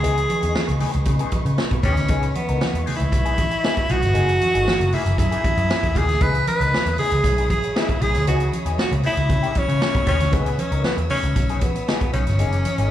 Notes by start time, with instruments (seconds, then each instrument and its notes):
Already playing: tenor saxophone G#4, string section B4 D#5 E5 C#6
0.03 picked electric bass C#2, clean electric guitar E3 B3 D#4 G#4, closed hi-hat
0.17 closed hi-hat
0.28 muted clean electric guitar stroke, closed hi-hat, high conga
0.41 picked electric bass E2, clean electric guitar E3 B3 D#4 G#4, closed hi-hat
0.55 snare, high conga
0.67 picked electric bass C#2, muted clean electric guitar stroke, closed hi-hat, muted conga
0.79 clean electric guitar E3 B3 D#4 G#4, open hi-hat, low conga
0.94 picked electric bass C#2, muted clean electric guitar stroke, closed hi-hat
1.05 picked electric bass C#3, muted clean electric guitar stroke, kick, closed hi-hat, low conga
1.19 clean electric guitar E3 B3 D#4 G#4, closed hi-hat
1.32 muted picked electric bass stroke, muted clean electric guitar stroke, kick, closed hi-hat, high conga
1.45 picked electric bass C#3, muted clean electric guitar stroke, closed hi-hat
1.58 snare, muted conga
1.71 picked electric bass B2, muted clean electric guitar stroke, kick, closed hi-hat
1.83 picked electric bass D#2, clean electric guitar E3 B3 D#4 G#4, tenor saxophone C#4, kick, closed hi-hat, low conga
1.97 picked electric bass D2, muted clean electric guitar stroke, snare, closed hi-hat
2.08 picked electric bass C#2, clean electric guitar E3 B3 D#4 G#4, kick, closed hi-hat, muted conga
2.23 closed hi-hat, muted conga
2.35 tenor saxophone B3, muted clean electric guitar stroke, closed hi-hat, high conga
2.48 picked electric bass C#2, clean electric guitar E3 B3 D#4 A#4, closed hi-hat
2.61 snare, muted conga, high conga
2.74 picked electric bass E2, muted clean electric guitar stroke, closed hi-hat, muted conga
2.86 clean electric guitar E3 B3 D#4 G#4, open hi-hat, low conga
2.97 picked electric bass C#2, tenor saxophone E4, muted clean electric guitar stroke, closed hi-hat
3.11 picked electric bass B1, muted clean electric guitar stroke, kick, closed hi-hat, muted conga, low conga
3.25 clean electric guitar E3 B3 D#4 G#4, closed hi-hat
3.38 kick, closed hi-hat, high conga
3.51 muted clean electric guitar stroke, closed hi-hat
3.63 clean electric guitar E3 B3 D#4 G#4, snare, muted conga
3.77 muted clean electric guitar stroke, kick, closed hi-hat, muted conga
3.89 picked electric bass B1, clean electric guitar E3 B3 D#4 G#4, tenor saxophone F#4, closed hi-hat, low conga
4.02 picked electric bass G1, muted clean electric guitar stroke, snare, closed hi-hat
4.13 picked electric bass F#1, clean electric guitar E3 A#3 D#4 G#4, string section A#4 G#5 D#6, closed hi-hat, muted conga
4.29 closed hi-hat, muted conga
4.41 muted clean electric guitar stroke, closed hi-hat, high conga
4.54 picked electric bass G#1, clean electric guitar E3 A#3 D#4 G#4, closed hi-hat
4.67 snare, high conga
4.80 picked electric bass F#1, muted clean electric guitar stroke, closed hi-hat
4.92 clean electric guitar E3 A#3 D#4 G#4, tenor saxophone E4, open hi-hat, low conga
5.06 picked electric bass F#1, muted clean electric guitar stroke, closed hi-hat
5.18 picked electric bass F#2, tenor saxophone E4, muted clean electric guitar stroke, kick, closed hi-hat, muted conga, low conga
5.31 clean electric guitar E3 A#3 D#4 G#4, closed hi-hat, muted conga
5.44 muted picked electric bass stroke, kick, closed hi-hat, high conga
5.57 picked electric bass F#2, muted clean electric guitar stroke, closed hi-hat
5.70 snare, muted conga
5.83 picked electric bass E2, muted clean electric guitar stroke, kick, closed hi-hat, muted conga
5.95 picked electric bass D#2, clean electric guitar E3 A#3 D#4 G#4, tenor saxophone G#4, kick, closed hi-hat, low conga
6.08 picked electric bass D2, muted clean electric guitar stroke, snare, closed hi-hat
6.21 picked electric bass C#2, clean electric guitar E3 B3 D#4 G#4, tenor saxophone B4, string section C#5 B5, kick, closed hi-hat
6.35 closed hi-hat, muted conga
6.46 tenor saxophone B4, muted clean electric guitar stroke, closed hi-hat, high conga
6.60 picked electric bass C#2, clean electric guitar E3 B3 D#4 A#4, closed hi-hat
6.73 snare, high conga
6.86 picked electric bass E2, muted clean electric guitar stroke, closed hi-hat
6.98 clean electric guitar E3 B3 D#4 G#4, tenor saxophone G#4, open hi-hat, low conga
7.11 picked electric bass C#2, muted clean electric guitar stroke, closed hi-hat
7.23 picked electric bass B1, muted clean electric guitar stroke, kick, closed hi-hat, low conga
7.38 clean electric guitar E3 B3 D#4 G#4, closed hi-hat
7.49 tenor saxophone G#4, kick, closed hi-hat, high conga
7.64 muted clean electric guitar stroke, closed hi-hat
7.76 clean electric guitar E3 B3 D#4 G#4, tenor saxophone E4, snare
7.89 muted clean electric guitar stroke, kick, closed hi-hat, muted conga
8.01 picked electric bass B1, clean electric guitar E3 B3 D#4 G#4, tenor saxophone G#4, closed hi-hat, low conga
8.15 picked electric bass D2, muted clean electric guitar stroke, snare, closed hi-hat
8.27 picked electric bass C#2, clean electric guitar E3 B3 D#4 G#4, tenor saxophone F#4, closed hi-hat, muted conga
8.40 closed hi-hat, muted conga
8.52 muted clean electric guitar stroke, closed hi-hat, high conga
8.66 picked electric bass E2, clean electric guitar E3 B3 D#4 G#4, closed hi-hat
8.78 tenor saxophone F#4, snare, muted conga, high conga
8.92 picked electric bass C#2, muted clean electric guitar stroke, closed hi-hat, muted conga
9.03 clean electric guitar E3 B3 D#4 G#4, tenor saxophone E4, open hi-hat, low conga
9.17 picked electric bass C#2, muted clean electric guitar stroke, closed hi-hat
9.29 picked electric bass C#3, string section E6, muted clean electric guitar stroke, kick, closed hi-hat, muted conga, low conga
9.43 clean electric guitar E3 B3 D#4 G#4, closed hi-hat
9.55 tenor saxophone C#4, muted picked electric bass stroke, kick, closed hi-hat, high conga
9.68 picked electric bass C#3, muted clean electric guitar stroke, closed hi-hat
9.82 snare, muted conga
9.94 picked electric bass B2, muted clean electric guitar stroke, kick, closed hi-hat
10.06 picked electric bass D#2, clean electric guitar E3 B3 D#4 G#4, tenor saxophone C#4, kick, closed hi-hat, low conga
10.20 picked electric bass D2, muted clean electric guitar stroke, snare, closed hi-hat
10.32 picked electric bass C#2, clean electric guitar E3 B3 D#4 G#4, tenor saxophone B3, kick, closed hi-hat
10.46 closed hi-hat, muted conga
10.58 tenor saxophone C#4, muted clean electric guitar stroke, closed hi-hat, high conga
10.71 picked electric bass C#2, clean electric guitar E3 B3 D#4 A#4, closed hi-hat
10.84 tenor saxophone B3, snare, muted conga, high conga
10.97 picked electric bass E2, muted clean electric guitar stroke, closed hi-hat, muted conga
11.09 clean electric guitar E3 B3 D#4 G#4, tenor saxophone C#4, open hi-hat, low conga
11.23 picked electric bass C#2, muted clean electric guitar stroke, closed hi-hat
11.36 picked electric bass B1, muted clean electric guitar stroke, kick, closed hi-hat, muted conga, low conga
11.49 clean electric guitar E3 B3 D#4 G#4, closed hi-hat
11.61 tenor saxophone B3, kick, closed hi-hat, high conga
11.75 muted clean electric guitar stroke, closed hi-hat
11.88 clean electric guitar E3 B3 D#4 G#4, snare, muted conga
12.01 muted clean electric guitar stroke, kick, closed hi-hat, muted conga
12.13 picked electric bass B1, clean electric guitar E3 B3 D#4 G#4, tenor saxophone C#4, closed hi-hat, low conga
12.27 picked electric bass G1, muted clean electric guitar stroke, snare, closed hi-hat
12.39 picked electric bass F#1, clean electric guitar E3 A#3 D#4 G#4, string section A#4 E5 G#5 D#6, closed hi-hat, muted conga
12.52 closed hi-hat, muted conga
12.65 muted clean electric guitar stroke, closed hi-hat, high conga
12.78 picked electric bass G#1, clean electric guitar E3 A#3 D#4 G#4, closed hi-hat